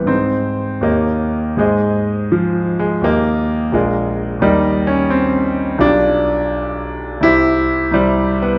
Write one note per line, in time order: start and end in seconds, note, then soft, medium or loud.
0.00 0.12 C2 soft
0.00 0.13 G2 soft
0.00 0.13 E3 soft
0.00 0.12 G3 soft
0.00 0.12 B3 medium
0.00 0.07 C4 soft
0.00 0.07 C5 medium
0.06 0.82 G#2 soft
0.06 0.85 C4 medium
0.06 0.82 D#4 soft
0.06 0.83 C5 soft
0.81 1.56 D#2 soft
0.81 1.59 A#3 medium
0.81 1.57 G4 soft
0.81 1.57 C#5 soft
0.81 1.57 D#5 soft
1.57 2.99 G#2 soft
1.57 2.32 G#3 medium
1.57 3.00 G#4 soft
1.57 3.00 C5 soft
1.57 3.01 D#5 soft
2.32 2.81 F3 medium
2.79 3.04 G#3 medium
3.02 3.71 D#2 soft
3.02 3.75 A#3 medium
3.02 3.72 G4 soft
3.02 3.72 A#4 soft
3.02 3.73 D#5 soft
3.72 4.41 A#1 soft
3.72 4.44 G#3 medium
3.72 4.41 F4 soft
3.72 4.40 A#4 soft
3.72 4.42 D5 soft
4.40 5.76 D#2 soft
4.40 4.88 G3 medium
4.40 5.77 D#4 soft
4.40 5.77 A#4 soft
4.40 5.77 D#5 soft
4.87 5.11 C#4 medium
5.10 5.81 C4 medium
5.78 7.18 B1 soft
5.78 7.23 D4 medium
5.78 7.19 F4 soft
5.78 7.19 G4 soft
5.78 7.20 D5 soft
7.21 7.90 C2 soft
7.21 7.91 E4 medium
7.21 7.92 G4 soft
7.21 7.93 C5 soft
7.91 8.58 C2 soft
7.91 8.44 G3 medium
7.91 8.58 E4 soft
7.91 8.58 G4 soft
7.91 8.58 C5 soft
8.42 8.58 B3 medium